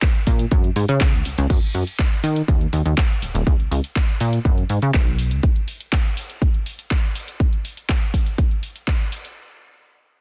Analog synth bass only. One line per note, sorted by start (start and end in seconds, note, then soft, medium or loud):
0.27 0.45 A#2 medium
0.52 0.70 F#2 medium
0.76 0.85 G#2 medium
0.89 1.15 C#3 loud
1.13 1.22 C#2 medium
1.26 1.36 C#2 soft
1.38 1.47 C#2 loud
1.50 1.59 F#2 loud
1.75 1.84 F#2 medium
2.23 2.42 D#3 medium
2.48 2.67 D#2 medium
2.73 2.82 D#2 medium
2.86 2.94 D#2 medium
3.22 3.32 D#1 soft
3.35 3.43 D#1 loud
3.47 3.56 C#2 loud
3.59 3.69 C#2 soft
3.71 3.81 C#2 medium
4.21 4.39 A#2 medium
4.45 4.63 F#2 medium
4.70 4.79 G#2 medium
4.83 4.91 C#3 loud
4.94 5.33 B1 loud
5.31 5.40 C#2 medium